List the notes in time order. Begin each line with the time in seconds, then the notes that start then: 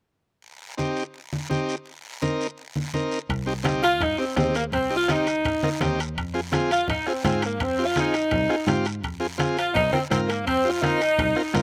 0.42 long guiro
0.78 C4 D#4 G4, high conga, short guiro
0.97 short guiro
1.14 long guiro
1.33 high conga
1.49 C4 D#4 G4, high conga, short guiro
1.69 short guiro
1.86 long guiro
2.22 C4 D#4 A#4, high conga, short guiro
2.41 short guiro
2.58 long guiro
2.76 high conga
2.94 C4 D#4 A#4, high conga, short guiro
3.12 short guiro
3.29 C2, bombo low, high timbale, long guiro
3.46 C4 D#4 G4
3.63 C4 D#4 G4, bombo rim, high conga, high timbale, short guiro
3.83 F4, high timbale, short guiro
4.00 G2 D#4, bombo low, low conga, high timbale, long guiro
4.18 C4 D#4 G4
4.36 D#2 C4 D#4 G4, bombo low, bombo rim, high conga, high timbale, low timbale, short guiro
4.54 A#3, high timbale, short guiro
4.72 C2 C4, bombo low, low conga, high timbale, long guiro
4.90 C4 D#4 G4
4.96 F4
5.08 C4 D#4 G4, bombo rim, high conga, high timbale, short guiro
5.27 high timbale, short guiro
5.45 G2, bombo low, low conga, high timbale, long guiro
5.63 C4 D#4 A#4, bombo rim, high conga
5.81 D#2 C4 D#4 G4, bombo rim, high conga, low conga, high timbale, short guiro
6.00 high timbale, short guiro
6.17 F2, bombo low, high timbale, long guiro
6.34 C4 F4 G#4
6.52 C4 F4 G#4, bombo rim, high conga, high timbale, short guiro
6.71 F4, high timbale, short guiro
6.88 C2 D#4, bombo low, low conga, high timbale, long guiro
7.07 C4 F4 G#4, bombo rim
7.24 G#2 C4 F4 G#4, bombo low, bombo rim, high conga, high timbale, short guiro
7.42 A#3, high timbale, short guiro
7.60 F2 C4, bombo low, low conga, high timbale, long guiro
7.78 C4 F4 G4
7.85 F4
7.96 C4 D#4 F4 G#4, bombo rim, high conga, high timbale, short guiro
8.14 high timbale, short guiro
8.31 C2, bombo low, low conga, high timbale, long guiro
8.49 C4 F4 G#4, bombo rim
8.67 G#2 C4 F4 G4, bombo rim, high conga, high timbale, short guiro
8.85 high timbale, short guiro
9.04 F2, bombo low, high timbale, long guiro
9.20 C4 F4 G#4
9.38 C4 F4 G#4, bombo rim, high conga, high timbale, short guiro
9.57 F4, high timbale, short guiro
9.75 C2 D#4, bombo low, low conga, high timbale, long guiro
9.92 C4 F4 A#4, bombo rim, high conga
10.10 G#2 C4 F4 A#4, bombo rim, high conga, high timbale, short guiro
10.28 A#3, high timbale, short guiro
10.46 F2 C4, bombo low, high timbale, long guiro
10.65 C4 F4 G4
10.69 F4
10.81 C4 D#4 F4 A#4, bombo rim, high conga, high timbale, short guiro
11.01 high timbale, short guiro
11.18 C2, bombo low, low conga, high timbale, long guiro
11.35 C4 F4 A#4, bombo rim
11.54 G#2 C4 F4 A#4, bombo rim, high conga, low conga, high timbale, short guiro